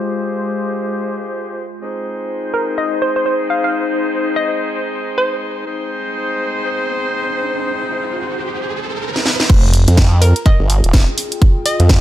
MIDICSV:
0, 0, Header, 1, 8, 480
1, 0, Start_track
1, 0, Key_signature, -4, "minor"
1, 0, Tempo, 480000
1, 1816, Time_signature, 4, 2, 24, 8
1, 12006, End_track
2, 0, Start_track
2, 0, Title_t, "Synth pluck"
2, 0, Program_c, 0, 84
2, 2537, Note_on_c, 0, 70, 86
2, 2735, Note_off_c, 0, 70, 0
2, 2778, Note_on_c, 0, 75, 90
2, 2976, Note_off_c, 0, 75, 0
2, 3019, Note_on_c, 0, 72, 88
2, 3131, Note_off_c, 0, 72, 0
2, 3161, Note_on_c, 0, 72, 87
2, 3222, Note_off_c, 0, 72, 0
2, 3259, Note_on_c, 0, 72, 75
2, 3348, Note_off_c, 0, 72, 0
2, 3501, Note_on_c, 0, 77, 81
2, 3589, Note_off_c, 0, 77, 0
2, 3641, Note_on_c, 0, 77, 75
2, 3702, Note_off_c, 0, 77, 0
2, 4362, Note_on_c, 0, 75, 91
2, 4540, Note_off_c, 0, 75, 0
2, 5178, Note_on_c, 0, 72, 92
2, 5559, Note_off_c, 0, 72, 0
2, 10215, Note_on_c, 0, 70, 94
2, 10414, Note_off_c, 0, 70, 0
2, 10456, Note_on_c, 0, 75, 92
2, 10655, Note_off_c, 0, 75, 0
2, 11657, Note_on_c, 0, 75, 91
2, 12006, Note_off_c, 0, 75, 0
2, 12006, End_track
3, 0, Start_track
3, 0, Title_t, "Ambient pad"
3, 0, Program_c, 1, 92
3, 0, Note_on_c, 1, 56, 69
3, 0, Note_on_c, 1, 65, 82
3, 1815, Note_on_c, 1, 63, 76
3, 1969, Note_on_c, 1, 72, 77
3, 2892, Note_off_c, 1, 56, 0
3, 3230, Note_off_c, 1, 65, 0
3, 7575, Note_off_c, 1, 63, 0
3, 7575, Note_off_c, 1, 72, 0
3, 9498, Note_on_c, 1, 65, 76
3, 10058, Note_on_c, 1, 68, 73
3, 10495, Note_on_c, 1, 79, 76
3, 12006, Note_off_c, 1, 65, 0
3, 12006, Note_off_c, 1, 68, 0
3, 12006, Note_off_c, 1, 79, 0
3, 12006, End_track
4, 0, Start_track
4, 0, Title_t, "Horn section"
4, 0, Program_c, 2, 61
4, 0, Note_on_c, 2, 56, 82
4, 0, Note_on_c, 2, 65, 75
4, 0, Note_on_c, 2, 67, 75
4, 0, Note_on_c, 2, 72, 90
4, 1646, Note_off_c, 2, 56, 0
4, 1646, Note_off_c, 2, 65, 0
4, 1646, Note_off_c, 2, 67, 0
4, 1646, Note_off_c, 2, 72, 0
4, 1816, Note_on_c, 2, 56, 85
4, 1816, Note_on_c, 2, 60, 76
4, 1816, Note_on_c, 2, 63, 76
4, 1816, Note_on_c, 2, 72, 94
4, 5632, Note_off_c, 2, 56, 0
4, 5632, Note_off_c, 2, 60, 0
4, 5632, Note_off_c, 2, 72, 0
4, 5633, Note_off_c, 2, 63, 0
4, 5656, Note_on_c, 2, 60, 80
4, 5656, Note_on_c, 2, 72, 92
4, 5657, Note_on_c, 2, 56, 81
4, 5657, Note_on_c, 2, 63, 78
4, 9473, Note_off_c, 2, 56, 0
4, 9473, Note_off_c, 2, 60, 0
4, 9473, Note_off_c, 2, 63, 0
4, 9473, Note_off_c, 2, 72, 0
4, 12006, End_track
5, 0, Start_track
5, 0, Title_t, "Wobble bass"
5, 0, Program_c, 3, 39
5, 9878, Note_on_c, 3, 41, 95
5, 10336, Note_off_c, 3, 41, 0
5, 10599, Note_on_c, 3, 31, 97
5, 10816, Note_off_c, 3, 31, 0
5, 10838, Note_on_c, 3, 27, 100
5, 11056, Note_off_c, 3, 27, 0
5, 11799, Note_on_c, 3, 41, 96
5, 12006, Note_off_c, 3, 41, 0
5, 12006, End_track
6, 0, Start_track
6, 0, Title_t, "FM bass"
6, 0, Program_c, 4, 39
6, 9497, Note_on_c, 4, 29, 95
6, 9856, Note_off_c, 4, 29, 0
6, 12006, End_track
7, 0, Start_track
7, 0, Title_t, "Riser"
7, 0, Program_c, 5, 103
7, 5657, Note_on_c, 5, 60, 73
7, 9497, Note_off_c, 5, 60, 0
7, 12006, End_track
8, 0, Start_track
8, 0, Title_t, "Drums"
8, 9159, Note_on_c, 9, 38, 48
8, 9256, Note_off_c, 9, 38, 0
8, 9256, Note_on_c, 9, 38, 75
8, 9356, Note_off_c, 9, 38, 0
8, 9399, Note_on_c, 9, 38, 78
8, 9496, Note_on_c, 9, 42, 58
8, 9496, Note_on_c, 9, 49, 108
8, 9497, Note_on_c, 9, 36, 120
8, 9499, Note_off_c, 9, 38, 0
8, 9596, Note_off_c, 9, 42, 0
8, 9596, Note_off_c, 9, 49, 0
8, 9597, Note_off_c, 9, 36, 0
8, 9736, Note_on_c, 9, 46, 108
8, 9836, Note_off_c, 9, 46, 0
8, 9878, Note_on_c, 9, 42, 70
8, 9974, Note_on_c, 9, 38, 122
8, 9976, Note_off_c, 9, 42, 0
8, 9976, Note_on_c, 9, 42, 57
8, 9977, Note_on_c, 9, 36, 124
8, 10074, Note_off_c, 9, 38, 0
8, 10076, Note_off_c, 9, 42, 0
8, 10077, Note_off_c, 9, 36, 0
8, 10217, Note_on_c, 9, 46, 110
8, 10317, Note_off_c, 9, 46, 0
8, 10360, Note_on_c, 9, 42, 72
8, 10457, Note_off_c, 9, 42, 0
8, 10457, Note_on_c, 9, 36, 121
8, 10457, Note_on_c, 9, 42, 54
8, 10557, Note_off_c, 9, 36, 0
8, 10557, Note_off_c, 9, 42, 0
8, 10697, Note_on_c, 9, 46, 106
8, 10797, Note_off_c, 9, 46, 0
8, 10840, Note_on_c, 9, 42, 72
8, 10934, Note_on_c, 9, 38, 127
8, 10937, Note_off_c, 9, 42, 0
8, 10937, Note_on_c, 9, 36, 123
8, 10937, Note_on_c, 9, 42, 58
8, 11034, Note_off_c, 9, 38, 0
8, 11037, Note_off_c, 9, 36, 0
8, 11037, Note_off_c, 9, 42, 0
8, 11176, Note_on_c, 9, 46, 109
8, 11276, Note_off_c, 9, 46, 0
8, 11319, Note_on_c, 9, 42, 67
8, 11416, Note_off_c, 9, 42, 0
8, 11416, Note_on_c, 9, 42, 54
8, 11417, Note_on_c, 9, 36, 127
8, 11516, Note_off_c, 9, 42, 0
8, 11517, Note_off_c, 9, 36, 0
8, 11656, Note_on_c, 9, 46, 111
8, 11756, Note_off_c, 9, 46, 0
8, 11798, Note_on_c, 9, 42, 65
8, 11893, Note_on_c, 9, 38, 126
8, 11896, Note_off_c, 9, 42, 0
8, 11896, Note_on_c, 9, 42, 53
8, 11897, Note_on_c, 9, 36, 127
8, 11993, Note_off_c, 9, 38, 0
8, 11996, Note_off_c, 9, 42, 0
8, 11997, Note_off_c, 9, 36, 0
8, 12006, End_track
0, 0, End_of_file